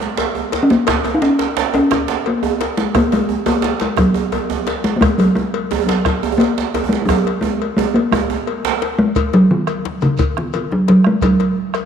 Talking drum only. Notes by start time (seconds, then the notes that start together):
Already playing: G#3
0.63 C#4
0.71 A#3
1.15 D#4
1.22 C#4
1.75 C#4
2.27 A#3
2.77 G#3
2.96 A#3
3.13 G#3
3.46 A#3
3.81 G#3
3.99 F#3
4.84 G#3
4.96 A#3
5.01 G#3
5.18 F#3
5.35 G#3
5.86 F#3
6.38 A#3
6.89 G#3
7.02 F#3 G#3
7.41 G#3
7.77 G#3
7.94 A#3
8.12 G#3
8.99 G#3
9.34 F#3
9.51 D#3
10.03 C#3
10.38 D#3
10.55 D#3
10.72 F#3
10.89 F#3
11.07 G#3
11.23 F#3